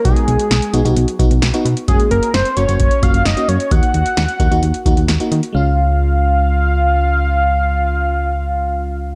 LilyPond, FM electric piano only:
\new Staff \with { instrumentName = "FM electric piano" } { \time 4/4 \key des \major \tempo 4 = 131 <ces' ees' ges'>4 r8 <ces' ees' ges'>16 <ces' ees' ges'>8 r16 <ces' ees' ges'>8 r16 <ces' ees' ges'>8 r16 | <bes des' ges'>4 r8 <bes des' ges'>16 <bes des' ges'>8 r16 <bes des' ges'>8 r16 <bes des' ges'>8 r16 | <bes ees' ges'>4 r8 <bes ees' ges'>16 <bes ees' ges'>8 r16 <bes ees' ges'>8 r16 <bes ees' ges'>8 r16 | <aes des' f'>1~ |
<aes des' f'>1 | }